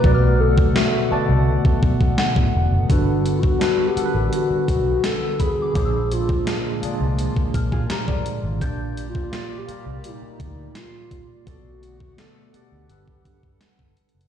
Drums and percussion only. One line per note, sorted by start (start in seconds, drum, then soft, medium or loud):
0.04 kick loud
0.58 kick medium
0.76 snare loud
1.65 kick medium
1.83 kick medium
2.01 kick loud
2.18 snare loud
2.36 kick medium
2.90 kick loud
2.90 closed hi-hat medium
3.26 closed hi-hat medium
3.43 kick medium
3.61 snare loud
3.61 closed hi-hat medium
3.97 closed hi-hat medium
4.33 closed hi-hat medium
4.68 kick medium
4.68 closed hi-hat medium
5.04 snare loud
5.04 closed hi-hat medium
5.40 kick medium
5.40 closed hi-hat medium
5.75 kick loud
5.75 closed hi-hat medium
6.12 closed hi-hat medium
6.29 kick medium
6.47 snare loud
6.47 closed hi-hat medium
6.83 closed hi-hat medium
7.19 closed hi-hat medium
7.36 kick medium
7.54 kick medium
7.54 closed hi-hat medium
7.72 kick medium
7.90 snare loud
7.90 closed hi-hat medium
8.08 kick loud
8.26 closed hi-hat medium
8.61 kick loud
8.61 closed hi-hat medium
8.97 closed hi-hat medium
9.15 kick medium
9.33 snare loud
9.33 closed hi-hat medium
9.69 closed hi-hat medium
10.04 closed hi-hat medium
10.40 kick medium
10.40 closed hi-hat medium
10.75 snare loud
10.75 closed hi-hat medium
11.11 kick medium
11.11 closed hi-hat medium
11.47 kick loud
11.47 closed hi-hat medium
11.83 closed hi-hat medium
12.00 kick medium
12.18 snare loud
12.18 closed hi-hat medium
12.54 closed hi-hat medium
12.89 closed hi-hat medium
13.08 kick medium
13.25 kick medium
13.25 closed hi-hat medium
13.43 kick medium
13.61 snare loud
13.61 closed hi-hat medium
13.79 kick medium
13.97 closed hi-hat soft
13.97 open hi-hat medium
14.09 closed hi-hat medium
14.21 closed hi-hat medium